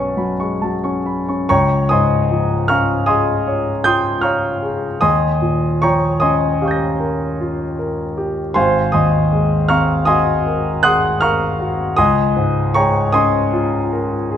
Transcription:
grand piano
Already playing: B1 F#3 B3 C#4 B4 C#5 D#5 F#5 A5 C#6 A6 D#7
0.17 F#3 B5
0.40 G#3 C#6
0.62 F#3 A5
0.84 C#4 C#6
1.06 B5
1.29 C#4 C#6
1.49 C#2 C#5 G5 A#5 C#6
1.89 G#2 D#5 G#5 C6 D#6
2.31 F3
2.68 C#4 F5 A#5 C#6 F6
3.06 G#4 D#5 G#5 C6 D#6
3.47 C#5
3.84 F4 G5 C6 D#6 G6
4.21 C#5 F5 A#5 C#6 F6
4.63 G#4
5.01 D#2 D#5 G#5 C6 D#6
5.42 A#2
5.82 F3 C#5 G5 A#5 C#6
6.20 C#4 D#5 G#5 C6 D#6
6.62 G4 F5 C#6
6.68 G6 A#6
7.00 A#4
7.40 F4
7.79 A#4
8.18 G4
8.54 G#1 C5 F5 G#5 C6
8.92 D#2 D#5 G#5 C6 D#6
9.32 G#3
9.69 C4 F5 A#5 C#6 F6
10.05 F#4 D#5 G#5 C6 D#6
10.46 A#4
10.83 G#4 F#5 C6 D#6 F#6
11.21 A#4 F5 A#5 C#6 F6
11.60 F#4
11.96 C#2 D#5 G#5 C6 D#6
12.37 G#2
12.74 G#3 C#5 G5 A#5 C#6
13.12 C#4 D#5 G#5 C6 D#6
13.53 F4
13.93 A#4
14.30 G#4

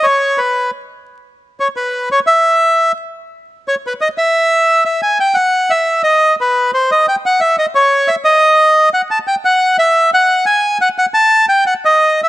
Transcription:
bandoneon
0.03 C#5
0.38 B4
1.60 C#5
1.76 B4
2.12 C#5
2.27 E5
3.68 C#5
3.87 B4
4.01 D#5
4.18 E5
4.85 E5
5.02 G#5
5.20 G5
5.34 F#5
5.70 E5
6.03 D#5
6.41 B4
6.74 C5
6.91 D#5
7.08 G5
7.26 F#5
7.41 E5
7.59 D#5
7.75 C#5
8.08 E5
8.25 D#5
8.94 F#5
9.11 A5
9.27 G5
9.45 F#5
9.79 E5
10.14 F#5
10.46 G#5
10.81 F#5
10.98 F#5
11.14 A5
11.49 G5
11.66 F#5
11.85 D#5
12.24 E5

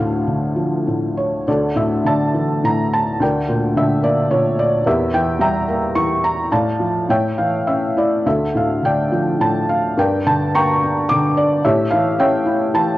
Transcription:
felt piano
Already playing: D2 A4 F5
0.00 A2
0.27 D3
0.56 F3
0.87 A2
1.17 C#5
1.48 D2 A4 D5
1.75 A2 E5
2.04 D3 D5 E5 A5
2.34 E3
2.64 A2 A#5
2.94 A5
3.20 D2 A#4 D5 G5
3.49 A#2
3.76 D3 E5
4.02 A#3 D5
4.31 A#2 C#5
4.59 D5
4.86 E2 G4 A#4 E5
5.14 E3 G5
5.39 G3 E5 G5 A#5
5.68 A#3
5.95 E3 C#6
6.24 A#5
6.51 A2 D5 F5 A5
6.79 F3
7.09 A2 C#5 E5 G5
7.38 E3 F5
7.67 C#4 E5
7.97 E4 D5
8.26 D2 A4 E5
8.55 A2 F5
8.83 D3 D5 G5
9.12 F3
9.40 A2 A5
9.69 F5
9.97 G2 A#4 D5 G5
10.26 D3 A5
10.55 A#3 G5 A#5 C#6
10.83 D4
11.09 D3 D6
11.37 D5
11.65 A2 G4 C#5 E5
11.91 E3 F5
12.19 C#4 C#5 E5 G5
12.46 E4
12.74 E3 A5

